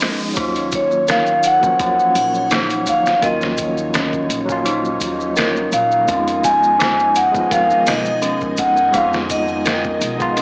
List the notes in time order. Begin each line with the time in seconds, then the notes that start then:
Already playing: F3 G#3 B3 C#4 D#4 A#4 D#5, riser
0.00 snare, closed hi-hat, maracas
0.20 maracas
0.33 D#2 F#3 A#3 D#4 C#5, kick, closed hi-hat, maracas
0.38 C#4 F4
0.55 closed hi-hat, maracas
0.72 C#5, kick, closed hi-hat, maracas
0.91 maracas
1.08 A#4 F5, snare, closed hi-hat, maracas
1.26 maracas
1.43 F#5, closed hi-hat, maracas
1.59 F#3 A#3, kick, maracas
1.64 F3 C#4
1.79 D#2 C#4, kick, closed hi-hat, maracas
1.99 maracas
2.15 A#1, closed hi-hat, triangle, maracas
2.34 maracas
2.50 D#4, snare, closed hi-hat, maracas
2.70 closed hi-hat, maracas
2.87 D#2 F5, closed hi-hat, maracas
3.06 snare, maracas
3.19 D#2 F#3 A#3 A#4, kick, closed hi-hat, maracas
3.23 C#4 F4 D#5
3.41 snare, maracas
3.58 kick, closed hi-hat, maracas
3.78 maracas
3.94 C#4, snare, closed hi-hat, maracas
4.13 kick, maracas
4.29 A#1, closed hi-hat, maracas
4.45 F#3 A#3, kick, maracas
4.50 C#4 F4
4.65 D#4, closed hi-hat, maracas
4.85 maracas
5.01 D#2, closed hi-hat, maracas
5.20 maracas
5.36 A#4, snare, closed hi-hat, maracas
5.56 C#2, maracas
5.72 A#1 F5, closed hi-hat, maracas
5.91 maracas
6.05 F2 G#3 B3 C#4 D#5 G#5, kick, closed hi-hat, maracas
6.09 D#4 F4
6.28 closed hi-hat, maracas
6.44 G#5, kick, closed hi-hat, maracas
6.63 maracas
6.79 D#4, snare, closed hi-hat, maracas
6.99 maracas
7.16 F#5, closed hi-hat, maracas
7.31 G#3 B3, kick, maracas
7.36 F3 D#4
7.51 F2 A#4 F5, kick, closed hi-hat, maracas
7.70 maracas
7.87 B1 D#5, snare, closed hi-hat, triangle, maracas
8.05 maracas
8.22 C#4, closed hi-hat, maracas
8.41 kick, maracas
8.57 F2 F#5, kick, closed hi-hat, maracas
8.77 maracas
8.91 F2 G#3 B3 D#4, kick, closed hi-hat, maracas
8.95 D#4 F4 F5
9.13 snare, maracas
9.30 D#5, kick, closed hi-hat, triangle, maracas
9.48 maracas
9.65 A#4, snare, closed hi-hat, maracas
9.84 kick, maracas
10.01 B1, closed hi-hat, maracas
10.18 G#3 B3 D#4 F4, kick, maracas
10.37 C#4, closed hi-hat, maracas